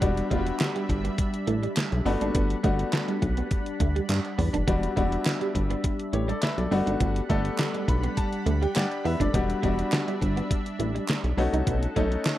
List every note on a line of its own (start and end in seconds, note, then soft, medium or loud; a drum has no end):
0.00 0.22 E1 loud
0.00 4.64 G3 medium
0.00 0.25 G3 medium
0.00 0.11 B3 medium
0.00 0.25 B3 medium
0.00 9.30 D4 medium
0.00 0.25 D4 medium
0.00 0.26 F#4 loud
0.00 2.04 E5 medium
0.00 6.67 B5 medium
0.00 kick loud
0.00 closed hi-hat loud
0.17 closed hi-hat medium
0.30 0.51 E1 medium
0.30 1.24 G3 medium
0.30 0.40 A3 medium
0.30 1.24 B3 medium
0.30 1.24 D4 medium
0.30 0.38 F4 medium
0.30 kick medium
0.30 closed hi-hat medium
0.38 1.27 F#4 medium
0.46 muted clean electric guitar stroke soft
0.46 closed hi-hat medium
0.60 snare loud
0.60 clap medium
0.60 closed hi-hat medium
0.75 0.84 G3 medium
0.75 closed hi-hat medium
0.89 1.09 G1 medium
0.89 muted clean electric guitar stroke soft
0.89 kick loud
0.89 closed hi-hat medium
1.04 1.13 B3 medium
1.04 closed hi-hat medium
1.18 muted clean electric guitar stroke soft
1.18 kick loud
1.18 closed hi-hat loud
1.34 closed hi-hat medium
1.47 1.68 A1 medium
1.47 1.57 A3 medium
1.47 closed hi-hat medium
1.63 1.71 G3 medium
1.63 closed hi-hat soft
1.76 muted clean electric guitar stroke soft
1.76 snare loud
1.76 clap medium
1.76 closed hi-hat loud
1.92 2.01 B1 loud
1.92 closed hi-hat soft
2.05 2.16 G1 loud
2.05 2.53 A3 medium
2.05 2.15 B3 medium
2.05 2.53 B3 medium
2.05 2.53 D4 medium
2.05 2.53 F#4 medium
2.05 4.65 F#5 medium
2.05 open hi-hat medium
2.21 2.30 G#1 medium
2.21 2.30 D4 medium
2.21 closed hi-hat medium
2.35 2.55 G1 loud
2.35 2.45 B3 medium
2.35 kick loud
2.35 closed hi-hat loud
2.50 closed hi-hat medium
2.63 2.84 G1 loud
2.63 3.57 A3 medium
2.63 2.73 A3 medium
2.63 3.57 B3 medium
2.63 3.57 D4 medium
2.63 3.57 F#4 medium
2.63 kick loud
2.63 closed hi-hat medium
2.79 muted clean electric guitar stroke soft
2.79 closed hi-hat soft
2.93 snare loud
2.93 clap medium
2.93 closed hi-hat medium
3.08 3.17 G3 medium
3.08 closed hi-hat soft
3.22 3.42 B1 medium
3.22 muted clean electric guitar stroke soft
3.22 kick loud
3.22 closed hi-hat medium
3.37 3.46 B3 medium
3.37 closed hi-hat soft
3.51 muted clean electric guitar stroke soft
3.51 kick loud
3.51 closed hi-hat medium
3.66 closed hi-hat soft
3.80 4.00 D2 medium
3.80 3.90 A3 medium
3.80 kick medium
3.80 closed hi-hat medium
3.95 4.04 G3 medium
3.95 closed hi-hat soft
4.09 4.20 G2 loud
4.09 muted clean electric guitar stroke soft
4.09 snare medium
4.09 clap medium
4.09 closed hi-hat loud
4.25 closed hi-hat soft
4.38 4.49 E2 loud
4.38 4.48 B3 medium
4.38 mid tom medium
4.38 open hi-hat medium
4.53 4.63 F1 loud
4.53 4.62 D4 medium
4.53 closed hi-hat medium
4.53 floor tom medium
4.67 4.88 E1 loud
4.67 4.91 G3 medium
4.67 11.34 G3 medium
4.67 4.77 B3 medium
4.67 4.91 B3 medium
4.67 4.91 D4 medium
4.67 4.91 F#4 medium
4.67 6.70 E5 medium
4.67 kick loud
4.67 closed hi-hat loud
4.83 closed hi-hat medium
4.96 5.17 E1 medium
4.96 5.89 G3 medium
4.96 5.06 A3 medium
4.96 5.90 B3 medium
4.96 5.90 D4 medium
4.96 5.84 F#4 loud
4.96 kick medium
4.96 closed hi-hat medium
5.12 muted clean electric guitar stroke soft
5.12 closed hi-hat soft
5.25 snare loud
5.25 clap medium
5.25 closed hi-hat medium
5.41 5.50 G3 medium
5.41 closed hi-hat medium
5.55 5.75 G1 medium
5.55 muted clean electric guitar stroke soft
5.55 kick medium
5.55 closed hi-hat medium
5.70 5.79 B3 medium
5.70 closed hi-hat medium
5.84 muted clean electric guitar stroke soft
5.84 kick medium
5.84 closed hi-hat loud
5.99 closed hi-hat soft
6.13 6.33 A1 medium
6.13 6.23 A3 medium
6.13 6.28 G4 medium
6.13 6.28 C#5 medium
6.13 closed hi-hat medium
6.28 6.37 G3 medium
6.28 6.42 A4 medium
6.28 6.42 D5 medium
6.28 closed hi-hat soft
6.42 6.58 B4 medium
6.42 6.57 E5 medium
6.42 muted clean electric guitar stroke soft
6.42 snare loud
6.42 clap medium
6.42 closed hi-hat loud
6.58 6.67 B1 medium
6.58 6.86 A4 medium
6.58 6.86 D5 medium
6.58 closed hi-hat soft
6.71 6.82 G1 loud
6.71 7.19 A3 medium
6.71 6.81 B3 medium
6.71 7.19 B3 medium
6.71 7.19 D4 medium
6.71 7.19 F#4 loud
6.71 9.31 F#5 medium
6.71 12.38 B5 loud
6.71 open hi-hat medium
6.86 6.96 G#1 medium
6.86 6.95 D4 medium
6.86 closed hi-hat medium
7.00 7.21 G1 loud
7.00 7.10 B3 medium
7.00 kick loud
7.00 closed hi-hat loud
7.16 closed hi-hat medium
7.29 7.50 G1 loud
7.29 8.23 A3 medium
7.29 7.39 A3 medium
7.29 8.23 B3 medium
7.29 8.23 D4 medium
7.29 8.23 A4 medium
7.29 kick medium
7.29 closed hi-hat medium
7.45 muted clean electric guitar stroke soft
7.45 closed hi-hat medium
7.59 snare loud
7.59 clap medium
7.59 closed hi-hat medium
7.74 7.83 G3 medium
7.74 closed hi-hat medium
7.88 8.08 B1 medium
7.88 8.15 B5 medium
7.88 muted clean electric guitar stroke soft
7.88 kick medium
7.88 closed hi-hat medium
8.03 8.12 B3 medium
8.03 closed hi-hat soft
8.17 8.59 A5 medium
8.17 muted clean electric guitar stroke soft
8.17 kick loud
8.17 closed hi-hat loud
8.33 closed hi-hat soft
8.46 8.67 D2 loud
8.46 8.56 A3 medium
8.46 closed hi-hat medium
8.62 8.70 G3 medium
8.62 8.75 G5 medium
8.62 closed hi-hat soft
8.75 8.86 G2 loud
8.75 9.04 D5 medium
8.75 9.03 F#5 medium
8.75 9.04 G5 medium
8.75 muted clean electric guitar stroke soft
8.75 snare loud
8.75 clap medium
8.75 closed hi-hat loud
8.91 closed hi-hat soft
9.04 9.16 E2 medium
9.04 9.14 B3 medium
9.04 9.20 B4 medium
9.04 9.20 E5 medium
9.04 open hi-hat medium
9.20 9.30 F1 medium
9.20 9.29 D4 medium
9.20 9.49 A4 medium
9.20 9.48 D5 medium
9.20 kick medium
9.20 closed hi-hat medium
9.33 9.54 E1 medium
9.33 9.58 G3 medium
9.33 9.43 B3 medium
9.33 9.58 B3 medium
9.33 11.36 D4 medium
9.33 9.58 D4 medium
9.33 9.58 F#4 medium
9.33 11.36 E5 medium
9.33 kick loud
9.33 closed hi-hat loud
9.50 closed hi-hat medium
9.62 9.83 E1 loud
9.62 10.56 G3 medium
9.62 9.72 A3 medium
9.62 10.56 B3 medium
9.62 10.56 D4 medium
9.62 10.56 F#4 loud
9.62 kick medium
9.62 closed hi-hat medium
9.78 muted clean electric guitar stroke soft
9.78 closed hi-hat medium
9.92 snare loud
9.92 clap medium
9.92 closed hi-hat medium
10.08 10.16 G3 medium
10.08 closed hi-hat medium
10.21 10.42 G1 medium
10.21 muted clean electric guitar stroke soft
10.21 kick medium
10.21 closed hi-hat medium
10.37 10.45 B3 medium
10.37 closed hi-hat soft
10.50 muted clean electric guitar stroke soft
10.50 kick loud
10.50 closed hi-hat loud
10.66 closed hi-hat medium
10.79 11.00 A1 medium
10.79 10.89 A3 medium
10.79 closed hi-hat medium
10.94 11.03 G3 medium
10.94 closed hi-hat soft
11.08 muted clean electric guitar stroke soft
11.08 snare loud
11.08 clap medium
11.08 closed hi-hat loud
11.24 11.33 B1 loud
11.24 closed hi-hat soft
11.37 11.48 B1 loud
11.37 11.85 A3 medium
11.37 11.48 B3 medium
11.37 11.85 C#4 medium
11.37 12.38 D#4 medium
11.37 11.85 D#4 medium
11.37 11.85 F#4 loud
11.37 12.38 A4 medium
11.37 12.38 F#5 medium
11.37 open hi-hat medium
11.53 11.62 C2 medium
11.53 11.62 D#4 medium
11.53 closed hi-hat medium
11.67 11.87 B1 loud
11.67 11.77 B3 medium
11.67 kick loud
11.67 closed hi-hat loud
11.83 closed hi-hat medium
11.96 12.16 B1 medium
11.96 12.38 A3 medium
11.96 12.06 A3 medium
11.96 12.38 C#4 medium
11.96 12.38 D#4 medium
11.96 12.38 A4 medium
11.96 kick loud
11.96 closed hi-hat medium
12.11 muted clean electric guitar stroke soft
12.11 closed hi-hat soft
12.25 snare loud
12.25 clap medium
12.25 closed hi-hat medium